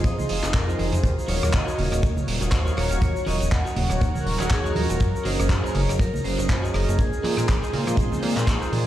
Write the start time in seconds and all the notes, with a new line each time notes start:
Already playing: F3 D#4 F4 G#4 C5 C6
0.04 F2 D#5, kick, closed hi-hat, shaker
0.18 high conga, low conga, shaker
0.29 F1 D#5, open hi-hat
0.43 F1 F4 G#4 C5 D#5, clap, closed hi-hat, shaker
0.54 F2 A#4, kick, clap, closed hi-hat, shaker
0.68 F4 G#4 C5 D#5, shaker
0.79 F1 D#4 F4 G#4 C5 G#5, open hi-hat, high conga
0.92 F1 D#4 F4 G#4 D#5, closed hi-hat, shaker
1.03 D#2 F#3 F#4 A#4 C5 C#5 F5, kick, closed hi-hat, shaker
1.19 shaker
1.28 D#1 F#4 A#4 C#5 D#5, open hi-hat, high conga
1.42 D#1, cross-stick, closed hi-hat, shaker
1.53 D#2 D#5, kick, clap, closed hi-hat
1.66 F4 F#4 A#4 C#5 D#5, shaker
1.78 D#1, open hi-hat, low conga
1.92 D#1, cross-stick, closed hi-hat, shaker
2.03 D#2, kick, closed hi-hat, shaker
2.17 low conga, shaker
2.27 D#1 F#4 A#4 C#5 F5, open hi-hat
2.41 D#1 F#4 A#4 C#5 D#5, closed hi-hat, shaker
2.52 D#2 C5, kick, clap, closed hi-hat, shaker
2.66 F#4 A#4 C#5 D#5, shaker
2.77 D#1 C#5, cross-stick, open hi-hat
2.91 D#1, closed hi-hat, shaker
3.02 D#2 F4 F#4 A#4 C#5, kick, closed hi-hat, shaker
3.16 shaker
3.26 D#1 F#4 A#4 C#5 D#5, open hi-hat, high conga
3.40 D#1, closed hi-hat, shaker
3.51 D#2 F#5, kick, clap, closed hi-hat, shaker
3.64 F#4 A#4 C#5 D#5 F#5, shaker
3.76 D#1, open hi-hat, low conga
3.90 D#1, cross-stick, closed hi-hat, shaker
4.01 D#2, kick, closed hi-hat, shaker
4.15 high conga, low conga, shaker
4.26 D#1, open hi-hat
4.39 D#1 F#4 A#4 C#5 D#5, clap, closed hi-hat, shaker
4.50 D#2 G#4, kick, clap, closed hi-hat, shaker
4.64 F#4 A#4 C#5 D#5, shaker
4.75 D#1 F4 F#4 A#4 C#5, open hi-hat, high conga
4.89 D#1 F4 F#4 A#4 D#5, closed hi-hat, shaker
5.00 F#2 C#4 D#4 G#4 A#4, kick, closed hi-hat, shaker
5.16 shaker
5.24 F#1 F#4 A#4 C5 C#5 D#5, open hi-hat, high conga
5.39 F#1, cross-stick, closed hi-hat, shaker
5.49 F#2, kick, clap, closed hi-hat, shaker
5.64 C#4 D#4 F#4 G#4 A#4 C#5 D#5, shaker
5.75 F#1 C#5, open hi-hat, low conga
5.89 F#1, cross-stick, closed hi-hat, shaker
5.99 F#2 A#4, kick, closed hi-hat, shaker
6.14 low conga, shaker
6.24 F#1 C#4 D#4 G#4 A#4 C5, open hi-hat
6.38 F#1 F#4 A#4 C#5 D#5, closed hi-hat, shaker
6.49 F#2, kick, clap, closed hi-hat, shaker
6.62 F#4 A#4 C#5 D#5, shaker
6.74 F#1 A#4, cross-stick, open hi-hat
6.88 F#1, closed hi-hat, shaker
6.98 A#1 G#3 C4 D#4 F4 G#4 C5, kick, closed hi-hat, shaker
7.13 shaker
7.23 A#2 G#4 A#4 C5 D#5, open hi-hat, high conga
7.37 A#2, cross-stick, closed hi-hat, shaker
7.49 A#1, kick, clap, closed hi-hat, shaker
7.61 C4 D#4 F4 G#4 A#4 C5 D#5, shaker
7.73 A#2, open hi-hat, low conga
7.87 A#2, cross-stick, closed hi-hat, high conga, shaker
7.97 A#1, kick, closed hi-hat, shaker
8.12 high conga, low conga, shaker
8.22 A#2 C4 D#4 F4 G#4, open hi-hat
8.36 A#2 C4 D#4 F4 G#4 A#4 C5 D#5, clap, closed hi-hat, shaker
8.47 A#1, kick, clap, closed hi-hat, shaker
8.61 G#4 A#4 C5 D#5, shaker
8.72 A#2 C4 D#4 F4 G#4, open hi-hat, high conga